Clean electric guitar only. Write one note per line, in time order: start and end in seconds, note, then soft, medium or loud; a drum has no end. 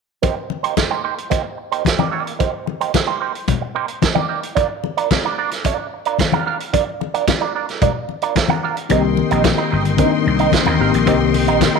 0.22 0.37 A#3 medium
0.22 0.36 D#4 medium
0.22 0.36 G4 medium
0.22 0.35 C5 medium
0.37 muted clean electric guitar stroke soft
0.50 muted clean electric guitar stroke soft
0.63 0.75 A#3 soft
0.63 0.75 D#4 soft
0.63 0.75 G4 medium
0.63 0.74 C5 medium
0.76 muted clean electric guitar stroke soft
0.90 1.02 A#3 soft
0.90 1.02 D#4 medium
0.90 1.02 G4 soft
0.90 1.02 C5 medium
1.04 1.18 A#3 medium
1.04 1.16 D#4 medium
1.04 1.16 G4 medium
1.04 1.16 C5 medium
1.17 muted clean electric guitar stroke soft
1.30 1.45 A#3 medium
1.30 1.44 D#4 medium
1.30 1.43 G4 medium
1.30 1.43 C5 medium
1.44 muted clean electric guitar stroke soft
1.57 muted clean electric guitar stroke soft
1.72 1.83 A#3 soft
1.72 1.83 D#4 medium
1.72 1.83 G4 medium
1.72 1.83 C5 medium
1.85 muted clean electric guitar stroke soft
1.99 2.10 A#3 soft
1.99 2.10 D#4 medium
1.99 2.10 G4 medium
1.99 2.10 D5 medium
2.11 2.32 A#3 medium
2.11 2.25 D#4 medium
2.11 2.25 G4 medium
2.11 2.26 D5 medium
2.26 muted clean electric guitar stroke soft
2.39 2.53 A#3 medium
2.39 2.52 D#4 medium
2.39 2.52 G4 medium
2.39 2.52 C5 medium
2.53 muted clean electric guitar stroke soft
2.66 muted clean electric guitar stroke soft
2.81 2.92 A#3 soft
2.81 2.92 D#4 medium
2.81 2.92 G4 medium
2.81 2.92 C5 medium
2.94 muted clean electric guitar stroke soft
3.07 3.19 A#3 soft
3.07 3.19 D#4 soft
3.07 3.18 G4 medium
3.07 3.18 C5 medium
3.20 3.35 A#3 medium
3.20 3.34 D#4 medium
3.20 3.34 G4 medium
3.20 3.34 C5 medium
3.35 muted clean electric guitar stroke soft
3.61 muted clean electric guitar stroke soft
3.75 3.89 A#3 medium
3.75 3.88 D#4 medium
3.75 3.87 G4 medium
3.75 3.87 C5 medium
3.88 muted clean electric guitar stroke medium
4.02 muted clean electric guitar stroke soft
4.15 4.27 A#3 medium
4.15 4.27 D#4 medium
4.15 4.26 G4 medium
4.15 4.26 D5 medium
4.29 4.43 A#3 medium
4.29 4.42 D#4 medium
4.29 4.42 G4 medium
4.29 4.42 D5 medium
4.43 muted clean electric guitar stroke soft
4.55 4.70 D4 medium
4.55 4.69 F4 medium
4.55 4.69 A#4 medium
4.55 4.68 D5 medium
4.70 muted clean electric guitar stroke soft
4.83 muted clean electric guitar stroke soft
4.97 5.09 D4 soft
4.97 5.09 F4 medium
4.97 5.08 A#4 medium
4.97 5.08 D5 medium
5.12 muted clean electric guitar stroke soft
5.25 5.36 D4 soft
5.25 5.36 F4 soft
5.25 5.36 A#4 soft
5.25 5.36 D5 soft
5.38 5.52 D4 medium
5.38 5.52 F4 medium
5.38 5.51 A#4 medium
5.38 5.51 D5 medium
5.66 5.86 D4 medium
5.66 5.79 F4 medium
5.66 5.78 A#4 medium
5.66 5.78 D5 medium
5.79 muted clean electric guitar stroke soft
5.93 muted clean electric guitar stroke soft
6.06 6.17 D4 soft
6.06 6.17 F4 soft
6.06 6.17 A#4 medium
6.06 6.17 D5 medium
6.20 muted clean electric guitar stroke soft
6.33 6.44 D4 medium
6.33 6.44 F4 medium
6.33 6.44 A#4 medium
6.33 6.44 F5 medium
6.46 6.60 D4 medium
6.46 6.59 F4 medium
6.46 6.59 A#4 medium
6.46 6.59 F5 medium
6.60 muted clean electric guitar stroke soft
6.73 6.87 D4 medium
6.73 6.86 F4 medium
6.73 6.85 A#4 medium
6.73 6.85 D5 medium
6.86 muted clean electric guitar stroke soft
7.00 muted clean electric guitar stroke soft
7.14 7.25 D4 soft
7.14 7.25 F4 medium
7.14 7.25 A#4 medium
7.14 7.25 D5 medium
7.41 7.52 D4 soft
7.41 7.52 F4 soft
7.41 7.52 A#4 medium
7.41 7.52 D5 medium
7.55 7.69 D4 medium
7.55 7.68 F4 medium
7.55 7.67 A#4 medium
7.55 7.67 D5 medium
7.68 muted clean electric guitar stroke soft
7.82 7.96 D4 medium
7.82 7.94 F4 medium
7.82 7.94 A#4 medium
7.82 7.93 D5 medium
8.09 muted clean electric guitar stroke soft
8.22 8.34 D4 soft
8.22 8.34 F4 medium
8.22 8.34 A#4 medium
8.22 8.33 D5 medium
8.36 muted clean electric guitar stroke soft
8.50 8.61 D4 medium
8.50 8.61 F4 medium
8.50 8.61 A#4 medium
8.50 8.60 F5 medium
8.63 8.77 D4 medium
8.63 8.77 F4 medium
8.63 8.77 A#4 medium
8.63 8.77 F5 medium
8.78 muted clean electric guitar stroke soft
8.91 9.04 C4 medium
8.91 9.04 G4 medium
8.91 9.03 A#4 medium
8.91 9.03 D#5 medium
9.04 muted clean electric guitar stroke soft
9.17 muted clean electric guitar stroke soft
9.31 9.42 C4 soft
9.31 9.42 G4 soft
9.31 9.42 A#4 soft
9.31 9.42 D#5 medium
9.58 9.69 C4 soft
9.58 9.69 G4 medium
9.58 9.69 A#4 medium
9.58 9.69 D#5 medium
9.71 9.85 C4 medium
9.71 9.84 G4 medium
9.71 9.84 A#4 medium
9.71 9.84 D#5 medium
9.85 muted clean electric guitar stroke medium
9.99 10.12 C4 medium
9.99 10.12 G4 medium
9.99 10.12 A#4 medium
9.99 10.11 D#5 medium
10.12 muted clean electric guitar stroke soft
10.26 muted clean electric guitar stroke soft
10.40 10.51 C4 medium
10.40 10.51 G4 medium
10.40 10.50 A#4 medium
10.40 10.50 D#5 medium
10.53 muted clean electric guitar stroke soft
10.66 10.78 C4 soft
10.66 10.77 G4 medium
10.66 10.77 A#4 medium
10.66 10.77 F5 medium
10.80 10.93 C4 medium
10.80 10.93 G4 medium
10.80 10.93 A#4 loud
10.80 10.93 F5 medium
10.94 muted clean electric guitar stroke soft
11.07 11.21 C4 medium
11.07 11.21 G4 medium
11.07 11.20 A#4 medium
11.07 11.20 D#5 medium
11.21 muted clean electric guitar stroke soft
11.34 muted clean electric guitar stroke soft
11.48 11.59 C4 soft
11.48 11.59 G4 medium
11.48 11.59 A#4 medium
11.48 11.58 D#5 medium
11.62 muted clean electric guitar stroke soft
11.75 11.80 C4 soft
11.75 11.80 G4 soft
11.75 11.80 A#4 medium
11.75 11.80 D#5 medium